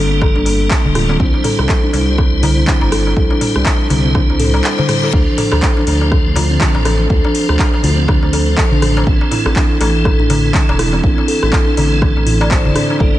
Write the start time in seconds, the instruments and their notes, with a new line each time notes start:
Already playing: detuned saw bass G1, tonewheel organ G3 A#3 A4
0.21 kalimba A4, kick, cross-stick, darbuka tek
0.36 detuned saw bass G1, kalimba D4, darbuka ka
0.45 open hi-hat, darbuka tek
0.71 kick, clap, darbuka tek
0.85 detuned saw bass D1, darbuka dum
0.95 kalimba F4, cross-stick, mid tom, open hi-hat
1.09 kalimba C4, darbuka tek
1.20 detuned saw bass C2, tonewheel organ G3 E4 C5, kalimba D4, kick
1.34 darbuka tek
1.44 kalimba A4, mid tom, open hi-hat, darbuka ka
1.59 detuned saw bass C2, cross-stick, darbuka tek
1.69 kalimba A4, kick, clap
1.84 kalimba D4
1.93 detuned saw bass C2, tonewheel organ G3 E4 C5, open hi-hat, darbuka ka, darbuka tek
2.18 kick, cross-stick, darbuka tek
2.33 detuned saw bass C2
2.43 kalimba E4, open hi-hat, darbuka ka, darbuka tek, darbuka dum
2.57 kalimba C4
2.67 kalimba D4, kick, clap
2.81 detuned saw bass G1, darbuka ka, darbuka tek
2.92 kalimba A4, cross-stick, open hi-hat
3.07 darbuka tek
3.16 detuned saw bass C2, tonewheel organ G3 E4 C5, kalimba A4, kick
3.30 kalimba D4, darbuka tek
3.41 mid tom, open hi-hat, darbuka ka
3.56 detuned saw bass C2, cross-stick
3.66 kick, clap, darbuka tek
3.90 detuned saw bass C2, tonewheel organ G3 E4 C5, kalimba E4, open hi-hat, darbuka ka, darbuka tek, darbuka dum
4.05 kalimba C4
4.15 kalimba D4, kick, cross-stick, reverse cymbal, darbuka tek
4.29 detuned saw bass C2, darbuka ka
4.40 kalimba A4, mid tom, open hi-hat
4.54 darbuka tek
4.64 clap
4.78 kalimba C5, darbuka tek, darbuka dum
4.89 tonewheel organ G3 E4 C5, cross-stick, mid tom, open hi-hat
5.03 kalimba A4, darbuka tek
5.13 detuned saw bass D2, tonewheel organ F3 D4 C5, kalimba D4, kick, darbuka tek
5.38 kalimba A4, mid tom, open hi-hat, darbuka ka
5.52 detuned saw bass D2, cross-stick, darbuka tek
5.62 kalimba A4, kick, clap
5.77 kalimba D4, darbuka tek
5.87 detuned saw bass D2, tonewheel organ F3 D4 C5, open hi-hat, darbuka ka
6.01 darbuka tek
6.12 kick, cross-stick
6.26 detuned saw bass D2
6.36 kalimba F4, open hi-hat, darbuka ka, darbuka tek, darbuka dum
6.51 kalimba C4
6.61 kalimba D4, kick, clap, darbuka tek
6.75 detuned saw bass A1, darbuka ka
6.85 kalimba A4, cross-stick, open hi-hat, darbuka tek
7.10 detuned saw bass D2, tonewheel organ F3 D4 C5, kalimba A4, kick
7.25 kalimba D4, darbuka tek
7.35 open hi-hat
7.49 detuned saw bass D2, cross-stick, darbuka tek
7.59 kick, clap
7.74 darbuka tek
7.83 detuned saw bass D2, tonewheel organ F3 D4 C5, kalimba F4, open hi-hat, darbuka ka, darbuka dum
7.98 kalimba C4
8.08 kalimba D4, kick, cross-stick, darbuka tek
8.23 detuned saw bass D2, darbuka ka
8.33 kalimba A4, open hi-hat, darbuka tek
8.58 kalimba A4, kick, clap, darbuka tek
8.71 detuned saw bass A1, kalimba D4, darbuka dum
8.82 cross-stick, mid tom, open hi-hat
8.97 darbuka tek
9.07 detuned saw bass A1, tonewheel organ E3 C4 A4, kick
9.21 darbuka tek
9.31 kalimba E4, mid tom, open hi-hat, darbuka ka
9.46 detuned saw bass A1, kalimba C4, cross-stick, darbuka tek
9.56 kalimba D4, kick, clap
9.81 detuned saw bass A1, tonewheel organ E3 C4 A4, kalimba A4, open hi-hat, darbuka ka, darbuka tek
10.05 kalimba A4, kick, cross-stick, darbuka tek
10.20 detuned saw bass A1, kalimba D4
10.30 open hi-hat, darbuka ka, darbuka tek, darbuka dum
10.54 kick, clap
10.69 detuned saw bass E1, darbuka ka, darbuka tek
10.79 kalimba E4, cross-stick, open hi-hat
10.93 kalimba C4, darbuka tek
11.03 detuned saw bass A1, tonewheel organ E3 C4 A4, kalimba D4, kick
11.18 darbuka tek
11.28 kalimba A4, open hi-hat
11.43 detuned saw bass A1, cross-stick
11.52 kalimba A4, kick, clap, darbuka tek
11.67 kalimba D4
11.77 detuned saw bass A1, tonewheel organ E3 C4 A4, open hi-hat, darbuka ka, darbuka tek, darbuka dum
12.02 kick, cross-stick, darbuka tek
12.16 detuned saw bass A1, darbuka ka
12.26 kalimba E4, mid tom, open hi-hat
12.41 kalimba D5, darbuka tek
12.51 kalimba C5, kick, clap
12.65 detuned saw bass E1, darbuka tek, darbuka dum
12.75 kalimba D4, cross-stick, mid tom, open hi-hat
12.90 kalimba D4, darbuka tek
12.99 detuned saw bass G1, tonewheel organ G3 A#3 A4, kalimba A4, kick, darbuka tek
13.15 kalimba D4